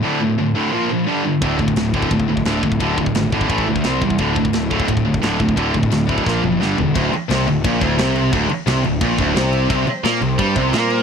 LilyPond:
<<
  \new Staff \with { instrumentName = "String section" } { \time 4/4 \key bes \lydian \tempo 4 = 174 r1 | r1 | r1 | r1 |
r1 | r1 | r1 | <g c' c''>1 | }
  \new Staff \with { instrumentName = "Distorted electric guitar" } { \clef bass \time 4/4 \key bes \lydian <d, a, d>8 <d, a,>8 <d, a,>8 <d, a, d>8 <bes, f bes>8 <bes, f>8 <g, d g>8 <g, d>8 | <d, a, d>8 <d, a,>8 <d, a,>8 <d, a, d>8 <d, a,>8 <d, a,>8 <d, a, d>8 <d, a,>8 | <d, a, d>8 <d, a,>8 <d, a,>8 <d, a, d>8 <a, e a>8 <a, e>8 <c g c'>8 <c g>8 | <d, a, d>8 <d, a,>8 <d, a,>8 <d, a, d>8 <d, a,>8 <d, a,>8 <d, a, d>8 <d, a,>8 |
<d, a, d>8 <d, a,>8 <d, a,>8 <d, a, d>8 <bes, f bes>8 <bes, f>8 <g, d g>8 <g, d>8 | d,8 r8 c8 d,8 bes,8 d,8 c4 | d,8 r8 c8 d,8 bes,8 d,8 c4 | c8 r8 bes8 c8 g8 c8 bes4 | }
  \new Staff \with { instrumentName = "Distorted electric guitar" } { \clef bass \time 4/4 \key bes \lydian <d, a, d>8 <d, a,>8 <d, a,>8 <d, a, d>8 <bes, f bes>8 <bes, f>8 <g, d g>8 <g, d>8 | <d, a, d>8 <d, a,>8 <d, a,>8 <d, a, d>8 <d, a,>8 <d, a,>8 <d, a, d>8 <d, a,>8 | <d, a, d>8 <d, a,>8 <d, a,>8 <d, a, d>8 <a, e a>8 <a, e>8 <c g c'>8 <c g>8 | <d, a, d>8 <d, a,>8 <d, a,>8 <d, a, d>8 <d, a,>8 <d, a,>8 <d, a, d>8 <d, a,>8 |
<d, a, d>8 <d, a,>8 <d, a,>8 <d, a, d>8 <bes, f bes>8 <bes, f>8 <g, d g>8 <g, d>8 | d,8 r8 c8 d,8 bes,8 d,8 c4 | d,8 r8 c8 d,8 bes,8 d,8 c4 | c8 r8 bes8 c8 g8 c8 bes4 | }
  \new Staff \with { instrumentName = "Picked electric bass" } { \clef bass \time 4/4 \key bes \lydian r1 | d,,4 d,,4 d,,8 d,,8 d,,8 d,,8 | d,,8 d,,8 gis,,4 a,,8 d,8 c,8 e,8 | d,,4 d,,4 d,,8 d,,8 d,,8 d,,8 |
d,,8 d,,8 d,,4 bes,,8 fis,,8 g,,8 e,,8 | d,,8 r8 c,8 d,,8 bes,,8 d,,8 c,4 | d,,8 r8 c,8 d,,8 bes,,8 d,,8 c,4 | c,8 r8 bes,8 c,8 g,8 c,8 bes,4 | }
  \new DrumStaff \with { instrumentName = "Drums" } \drummode { \time 4/4 r4 r4 r4 r4 | <bd rb>8 bd16 bd16 <rb sn>8 bd16 bd16 <bd rb>16 bd8 bd16 <rb sn>8 bd16 bd16 | <bd rb>8 bd16 bd16 <rb sn>8 bd16 bd16 <bd rb>16 bd8 bd16 <rb sn>8 bd16 bd16 | <bd rb>8 bd16 bd16 <rb sn>8 bd16 bd16 <bd rb>16 bd8 bd16 <rb sn>8 bd16 bd16 |
<bd rb>8 bd16 bd16 <rb sn>8 bd16 bd16 <bd sn>8 toml8 sn8 tomfh8 | <cymc bd>8 cymc8 <cymc sn>8 cymc8 <cymc bd>8 <cymc bd>8 <cymc sn>8 cymc8 | <cymc bd>8 cymc8 <cymc sn>8 cymc8 <cymc bd>8 <cymc bd>8 <cymc sn>8 cymc8 | <cymc bd>8 cymc8 <cymc sn>8 cymc8 <cymc bd>8 <cymc bd>8 <cymc sn>8 cymc8 | }
>>